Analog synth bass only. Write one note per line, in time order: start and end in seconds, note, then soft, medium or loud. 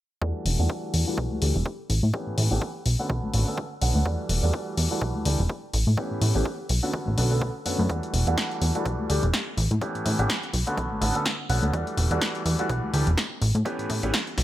0.22 0.32 E2 loud
0.45 0.56 E1 medium
0.59 0.67 E2 medium
0.94 1.04 E2 medium
1.18 1.28 B1 loud
1.42 1.52 D2 medium
1.55 1.63 E1 medium
1.90 2.00 A1 loud
2.03 2.11 A2 medium
2.27 2.35 A2 soft
2.38 2.48 A2 loud
2.51 2.59 A1 medium
2.86 2.96 B1 medium
3.10 3.20 B1 loud
3.33 3.44 A1 loud
3.82 3.92 B1 medium
3.95 4.03 D2 medium
4.06 4.16 E2 medium
4.29 4.40 E1 medium
4.43 4.51 E2 medium
4.77 4.88 E2 medium
5.01 5.12 B1 loud
5.25 5.36 D2 medium
5.39 5.47 E1 medium
5.73 5.84 A1 medium
5.87 5.95 A2 medium
6.11 6.20 A2 soft
6.21 6.32 A2 medium
6.35 6.43 A1 medium
6.70 6.80 B1 medium
7.07 7.15 A1 medium
7.18 7.50 B1 loud
7.66 7.76 F#2 soft
7.79 7.87 F#2 loud
7.89 8.00 E2 loud
8.13 8.24 E1 medium
8.27 8.35 E2 medium
8.61 8.72 E2 medium
8.85 8.96 B1 loud
9.09 9.20 D2 loud
9.23 9.31 E1 loud
9.57 9.68 A1 loud
9.71 9.79 A2 medium
9.95 10.03 A2 soft
10.05 10.16 A2 medium
10.19 10.27 A1 medium
10.53 10.64 B1 medium
10.77 10.88 B1 loud
10.91 10.99 A1 soft
11.01 11.12 A1 loud
11.49 11.60 B1 medium
11.63 11.71 D2 medium
11.73 11.84 E2 loud
11.97 12.08 E1 loud
12.11 12.19 E2 medium
12.45 12.56 E2 medium
12.69 12.80 B1 loud
12.93 13.04 D2 loud
13.07 13.15 E1 medium
13.41 13.52 A1 medium
13.55 13.63 A2 medium
13.79 13.87 A2 soft
13.90 14.00 A2 loud
14.03 14.11 A1 medium
14.38 14.44 B1 medium